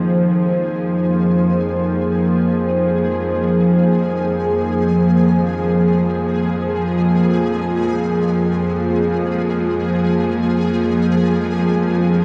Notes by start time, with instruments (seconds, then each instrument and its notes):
Already playing: synth drone F2 F3, ambient pad F3 A#3 D#4 G#4 C5, synth texture G#3 G#4
4.84 ambient pad F4
11.12 ambient pad D#4